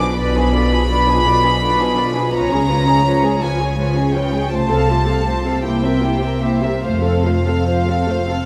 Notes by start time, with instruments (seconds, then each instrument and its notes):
Already playing: violin section D6
0.00 viola section F3 D4, violin section G#4 B4
0.16 double bass section B1, cello section B2, viola section D3 F4, violin section B4 D5 B5
0.35 viola section F3 D4, violin section G#4 B4
0.54 viola section D3 F4, violin section B4 D5
0.72 viola section F3 D4, violin section G#4 B4
0.90 viola section D3 F4, violin section B4 D5
1.08 viola section F3 D4, violin section G#4 B4
1.25 double bass section B1, cello section B2, viola section D3 F4, violin section B4 D5
1.43 viola section F3 D4, violin section G#4 B4
1.62 viola section D3 F4, violin section B4 D5
1.79 viola section F3 D4, violin section G#4 B4
1.97 viola section D3 F4, violin section B4 D5
2.14 viola section F3 D4, violin section G#4 B4
2.33 double bass section C#2, cello section C#3, viola section F3 F4, violin section B4 C#5 A#5
2.51 viola section G#3 C#4, violin section G#4 C#5
2.69 viola section F3 F4, violin section B4 C#5
2.87 viola section G#3 C#4, violin section G#4 C#5
3.05 viola section F3 F4, violin section B4 C#5
3.23 viola section G#3 C#4, violin section G#4 C#5
3.42 double bass section C#2, cello section C#3, viola section F3 F4, violin section B4 C#5 G#5
3.60 viola section G#3 C#4, violin section G#4 C#5
3.78 viola section F3 F4, violin section B4 C#5
3.96 viola section G#3 C#4, violin section G#4 C#5
4.14 viola section F3 F4, violin section B4 C#5 G5
4.33 viola section G#3 C#4, violin section G#4 C#5
4.50 double bass section C2, cello section C3, viola section A3 F4, violin section C5 A5
4.70 viola section C4 A4, violin section A4 F5
4.89 viola section A3 F4, violin section C5
5.06 viola section C4 A4, violin section A4 F5
5.26 viola section A3 F4, violin section C5
5.44 viola section C4 A4, violin section A4 F5
5.63 double bass section C2, cello section C3, viola section A#3 E4, violin section G4 C5 G5
5.83 viola section C4 G4, violin section A#4 E5
6.02 viola section A#3 E4, violin section G4 C5
6.21 viola section C4 G4, violin section A#4 E5
6.42 viola section A#3 E4, violin section G4 C5 E5
6.62 viola section C4 G4, violin section A#4 E5
6.82 double bass section F1, cello section F2, viola section A3 F4, violin section C5 F5
7.04 viola section C4 A4, violin section A4 F5
7.25 viola section A3 F4, violin section C5
7.46 viola section C4 A4, violin section A4 F5
7.67 viola section A3 F4, violin section C5
7.87 viola section C4 A4, violin section A4 F5
8.07 double bass section F1, cello section F2, viola section A3 F4, violin section C5
8.28 viola section C4 A4, violin section A4 F5